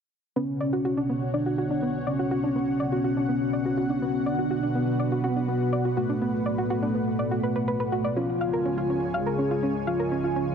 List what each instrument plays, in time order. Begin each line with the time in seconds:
0.36 analog synth pad B2 B3 F#4 C#5 F#5, ambient pad B3, synth arpeggio sound B3, analog synth lead C#4
0.60 synth arpeggio sound D5
0.73 synth arpeggio sound F#4
0.85 synth arpeggio sound F#4
0.97 synth arpeggio sound D4, ambient pad F#4
1.09 synth arpeggio sound B3
1.34 analog synth lead D4, synth arpeggio sound D5
1.46 synth arpeggio sound F#4
1.58 synth arpeggio sound F#4
1.70 synth arpeggio sound D4
1.82 synth arpeggio sound B3
2.07 analog synth lead C#4, synth arpeggio sound D5
2.19 synth arpeggio sound F#4
2.31 synth arpeggio sound F#4
2.43 synth arpeggio sound D4
2.56 synth arpeggio sound B3
2.80 synth arpeggio sound D5
2.92 synth arpeggio sound F#4
3.04 synth arpeggio sound F#4
3.17 synth arpeggio sound D4
3.29 synth arpeggio sound B3
3.53 synth arpeggio sound D5
3.65 synth arpeggio sound F#4
3.77 synth arpeggio sound F#4
3.90 synth arpeggio sound D4
4.02 synth arpeggio sound B3
4.26 analog synth lead D4, analog synth pad B4, synth arpeggio sound D5
4.39 synth arpeggio sound F#4
4.51 synth arpeggio sound F#4
4.63 synth arpeggio sound D4
4.75 synth arpeggio sound B3
5.00 synth arpeggio sound D5
5.12 synth arpeggio sound F#4
5.24 analog synth lead B3, synth arpeggio sound F#4
5.36 synth arpeggio sound D4
5.48 synth arpeggio sound B3
5.73 synth arpeggio sound D5
5.85 synth arpeggio sound F#4
5.97 analog synth lead A3, synth arpeggio sound F#4
6.09 synth arpeggio sound D4
6.21 synth arpeggio sound B3
6.46 synth arpeggio sound D5
6.58 synth arpeggio sound F#4
6.70 synth arpeggio sound F#4
6.82 synth arpeggio sound D4
6.95 synth arpeggio sound B3
7.19 synth arpeggio sound D5
7.31 synth arpeggio sound F#4
7.43 synth arpeggio sound B4
7.56 synth arpeggio sound B4
7.68 synth arpeggio sound B4
7.80 synth arpeggio sound B4
7.92 synth arpeggio sound F#4
8.04 synth arpeggio sound D5
8.16 analog synth pad C#3 G#3 F4 C#5 G#5, synth arpeggio sound C#4, ambient pad C#4, analog synth lead F4
8.38 ambient pad G#4, synth arpeggio sound F5
8.53 synth arpeggio sound A#4
8.62 synth arpeggio sound C#4, ambient pad D#5
8.78 synth arpeggio sound F4
8.90 synth arpeggio sound C#4, ambient pad F5
9.14 analog synth lead G#4, synth arpeggio sound F5
9.26 synth arpeggio sound A#4
9.39 synth arpeggio sound C#4
9.51 synth arpeggio sound F4
9.63 synth arpeggio sound C#4
9.87 analog synth lead F4, synth arpeggio sound F5
10.00 synth arpeggio sound A#4
10.12 synth arpeggio sound C#4
10.24 synth arpeggio sound F4
10.36 synth arpeggio sound C#4